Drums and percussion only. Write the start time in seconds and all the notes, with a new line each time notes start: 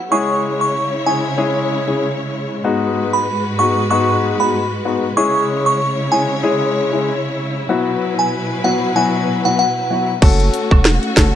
10.22 kick, closed hi-hat, crash, high woodblock
10.40 closed hi-hat
10.54 closed hi-hat, cabasa
10.71 kick, high woodblock
10.85 cross-stick, snare, closed hi-hat
11.03 closed hi-hat
11.17 kick, cross-stick, snare, closed hi-hat, cabasa